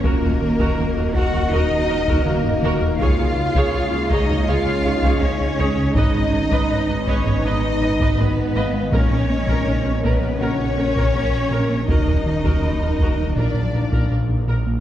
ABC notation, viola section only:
X:1
M:4/4
L:1/16
Q:1/4=81
K:Ebm
V:1 name="Viola section"
[GB] [GB] z [GB] [GB] [GB] [GB] [GB] [GB] z [GB] [GB] [GB] z [GB] z | [Ad] [Ad] z [Ad] [Ad] [Ad] [Ad] [Ad] [Ad] z [Ad] [Ad] [Ad] z [Ad] z | [ce] [ce] z [ce] [ce] [ce] [ce] [ce] [ce] z [ce] [ce] [ce] z [ce] z | B B z B B B B B B z B B B z B z |
[GB] [GB] z [GB] [GB] [GB] [GB] [GB] B z B B B z B z |]